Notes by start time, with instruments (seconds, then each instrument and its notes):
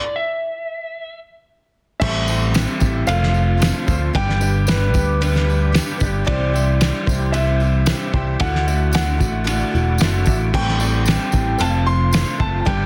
Already playing: electric slide guitar D5
0.16 electric slide guitar E5
2.00 picked electric bass A1, twelve-string acoustic guitar A2 E3 G3 C4 E4 A4, tonewheel organ C4 G4 A4, upright piano G4 A4 C5, grand piano E5, kick, crash
2.04 clean electric guitar G4
2.27 twelve-string acoustic guitar C4 E4 A4, upright piano G4 A4 C5, clean electric guitar G4, tambourine
2.32 twelve-string acoustic guitar G3
2.52 clean electric guitar E3, twelve-string acoustic guitar G3 C4 E4, snare, ride bell, tambourine
2.56 clean electric guitar G4, twelve-string acoustic guitar A4
2.79 picked electric bass A1, twelve-string acoustic guitar E4 A4, clean electric guitar G4, kick, tambourine
2.83 twelve-string acoustic guitar G3 C4
3.07 picked electric bass F1, clean electric guitar F2 C3, twelve-string acoustic guitar F3 A3 C4 F4 A4, tonewheel organ C4 F4 A4, upright piano F4 A4 C5, grand piano F5, ride bell, tambourine
3.23 snare
3.32 twelve-string acoustic guitar C4 F4 A4, tambourine
3.57 twelve-string acoustic guitar A3 C4 F4 A4
3.61 clean electric guitar F3 A3 C4 F4, snare, ride bell, tambourine
3.86 picked electric bass D2, clean electric guitar A3, twelve-string acoustic guitar C4 F4 A4, upright piano F4 A4 C5, kick, tambourine
3.91 clean electric guitar F3
4.13 picked electric bass G1, clean electric guitar G2 D3 B3, twelve-string acoustic guitar G3 D4 G4 B4, tonewheel organ D4 G4 B4, upright piano G4 B4 D5, grand piano G5, kick, ride bell
4.30 snare
4.41 clean electric guitar G3 B3, twelve-string acoustic guitar D4 G4 B4, upright piano G4 B4 D5, tambourine
4.67 twelve-string acoustic guitar G3 D4 G4 B4, clean electric guitar B3, grand piano B4, snare, ride bell, tambourine
4.94 picked electric bass D2, twelve-string acoustic guitar D4 G4 B4, kick, tambourine
4.98 clean electric guitar G3 B3
5.20 clean electric guitar G2 D3 B3, twelve-string acoustic guitar G3 D4 G4 B4, ride bell, tambourine
5.36 snare
5.46 twelve-string acoustic guitar D4 G4 B4, tambourine
5.72 twelve-string acoustic guitar G3 D4 G4 B4, clean electric guitar B3, snare, ride bell, tambourine
5.98 picked electric bass G1, twelve-string acoustic guitar D4 G4 B4, kick, tambourine
6.02 clean electric guitar G3 B3, upright piano G4 B4 D5
6.25 picked electric bass C2, twelve-string acoustic guitar C3 E3 G3 C4 E4 C5, tonewheel organ E4 G4 C5, upright piano G4 C5 E5, grand piano D5, kick, ride bell
6.30 clean electric guitar G4
6.54 twelve-string acoustic guitar G3 C4 E4 C5, clean electric guitar G4, upright piano G4 C5 E5, tambourine
6.80 clean electric guitar E3 G4, twelve-string acoustic guitar G3 C4 E4 C5, snare, ride bell, tambourine
7.06 picked electric bass C2, twelve-string acoustic guitar G3 C4 E4 C5, clean electric guitar G4, kick, tambourine
7.32 twelve-string acoustic guitar C3 E3 G3 C4 E4 C5, clean electric guitar G4, grand piano E5, ride bell, tambourine
7.60 twelve-string acoustic guitar G3 C4 E4 C5, tambourine
7.86 clean electric guitar E3, twelve-string acoustic guitar G3 C4 E4 C5, snare, ride bell, tambourine
7.91 clean electric guitar G4
8.13 picked electric bass C2, twelve-string acoustic guitar G3 C4 E4 C5, upright piano G4 C5 G5, clean electric guitar G4, kick
8.39 picked electric bass D2, twelve-string acoustic guitar D3 A3 E4 F#4 A4, tonewheel organ E4 F#4 D5, upright piano F#4 D5 E5, grand piano F#5, kick, ride bell, tambourine
8.55 snare
8.65 clean electric guitar A3, twelve-string acoustic guitar E4 F#4 A4, upright piano F#4 D5 E5, tambourine
8.92 clean electric guitar D3, twelve-string acoustic guitar A3 E4 F#4 A4, grand piano F#5, snare, ride bell, tambourine
9.18 picked electric bass A1, twelve-string acoustic guitar E4 F#4 A4, kick, tambourine
9.23 clean electric guitar A3
9.44 twelve-string acoustic guitar D3 A3 E4 F#4 A4, ride bell, tambourine
9.71 picked electric bass E1, twelve-string acoustic guitar E4 F#4 A4, tambourine
9.98 picked electric bass F#1, clean electric guitar D3, twelve-string acoustic guitar A3 E4 F#4 A4, upright piano C6, snare, ride bell, tambourine
10.24 picked electric bass A1, twelve-string acoustic guitar E4 F#4 A4, upright piano F#4, kick, tambourine
10.28 clean electric guitar A3, upright piano D5 E5
10.51 picked electric bass A1, twelve-string acoustic guitar A2 E3 G3 C4 E4 A4, tonewheel organ G4 A4 C5, upright piano A4 C5 G5, grand piano G5, kick, crash
10.56 clean electric guitar G4
10.69 snare
10.79 twelve-string acoustic guitar C4 E4 A4, clean electric guitar G4, upright piano A4 C5 D5, tambourine
10.83 twelve-string acoustic guitar G3
11.05 clean electric guitar E3 G4, twelve-string acoustic guitar G3 C4 E4, snare, ride bell, tambourine
11.10 twelve-string acoustic guitar A4
11.32 picked electric bass A1, twelve-string acoustic guitar C4 E4 A4, clean electric guitar G4, kick, tambourine
11.37 twelve-string acoustic guitar G3
11.58 picked electric bass F1, clean electric guitar F2 C3, twelve-string acoustic guitar F3 A3 C4 F4 A4, tonewheel organ F4 A4 C5, upright piano A4 C5 F5, grand piano A5, ride bell, tambourine
11.86 twelve-string acoustic guitar C4 F4 A4, grand piano C6, tambourine
12.11 clean electric guitar F3, twelve-string acoustic guitar A3 C4 F4, snare, ride bell, tambourine
12.16 twelve-string acoustic guitar A4
12.38 picked electric bass F#1, clean electric guitar F3 A3, twelve-string acoustic guitar C4 F4 A4, upright piano A4 C5 E5, grand piano A5, kick
12.61 grand piano A5
12.65 picked electric bass G1, clean electric guitar G2 D3 B3, twelve-string acoustic guitar G3 D4 G4 B4, tonewheel organ D4 G4 B4, upright piano G4 B4 D5, grand piano G5, kick, ride bell